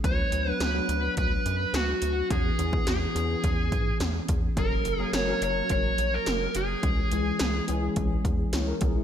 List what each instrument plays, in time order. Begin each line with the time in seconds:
0.03 analog synth bass D2, tine electric piano F#3 B3 D4 B4, lead electric guitar C#5, kick, closed hi-hat
0.32 analog synth bass D2, closed hi-hat
0.46 tine electric piano F#3 B3 D4 B4, lead electric guitar B4
0.60 analog synth bass D2, lead electric guitar B4, snare, closed hi-hat
0.74 tine electric piano F#3 B3 D4 B4
0.89 analog synth bass D2, closed hi-hat
1.17 analog synth bass D2, lead electric guitar B4, kick, closed hi-hat
1.46 analog synth bass F#2, closed hi-hat
1.73 analog synth bass D2, lead electric guitar F#4, snare, closed hi-hat
2.02 analog synth bass D2, closed hi-hat
2.29 analog synth bass E2, tine electric piano E3 B3 C#4 G#4, lead electric guitar G#4, kick, closed hi-hat
2.58 analog synth bass E2, tine electric piano E3 B3 C#4 G#4, closed hi-hat
2.73 kick
2.87 analog synth bass E2, lead electric guitar G#4, snare, closed hi-hat
3.15 analog synth bass E2, tine electric piano E3 B3 C#4 G#4, closed hi-hat
3.44 analog synth bass E2, kick, closed hi-hat
3.72 analog synth bass G#2, kick, closed hi-hat
4.00 analog synth bass E2, snare, closed hi-hat
4.28 analog synth bass E2, kick, closed hi-hat
4.56 analog synth bass F#1, tine electric piano F#3 A#3 C#4 A#4, lead electric guitar A#4, kick, closed hi-hat
4.85 analog synth bass F#1, closed hi-hat
4.99 tine electric piano F#3 A#3 C#4 A#4
5.13 analog synth bass F#1, lead electric guitar C#5, snare, closed hi-hat
5.27 tine electric piano F#3 A#3 C#4 A#4
5.41 analog synth bass F#1, lead electric guitar C#5, closed hi-hat
5.69 analog synth bass F#1, lead electric guitar C#5, kick, closed hi-hat
5.98 analog synth bass A#1, closed hi-hat
6.14 lead electric guitar A#4
6.26 analog synth bass F#1, snare, closed hi-hat
6.55 analog synth bass F#1, lead electric guitar G#4, closed hi-hat
6.83 analog synth bass C#2, tine electric piano E3 G#3 C#4 G#4, kick, closed hi-hat
7.11 analog synth bass C#2, tine electric piano E3 G#3 C#4 G#4, closed hi-hat
7.39 analog synth bass C#2, snare, closed hi-hat
7.68 analog synth bass C#2, tine electric piano E3 G#3 C#4 G#4, closed hi-hat
7.96 analog synth bass C#2, kick, closed hi-hat
8.25 analog synth bass E2, kick, closed hi-hat
8.53 analog synth bass C#2, tine electric piano E4 C#5, snare, closed hi-hat
8.67 tine electric piano C#4 A#4
8.81 analog synth bass C#2, tine electric piano B3 G#4, kick, closed hi-hat
8.96 tine electric piano G#3 E4